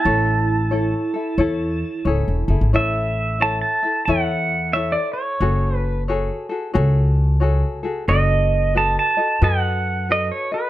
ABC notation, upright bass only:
X:1
M:4/4
L:1/16
Q:"Swing" 1/4=90
K:A
V:1 name="Upright bass" clef=bass
A,,,8 E,,4 C,,, E,,, F,,, G,,, | A,,,8 E,,8 | F,,,8 C,,8 | F,,,8 F,,8 |]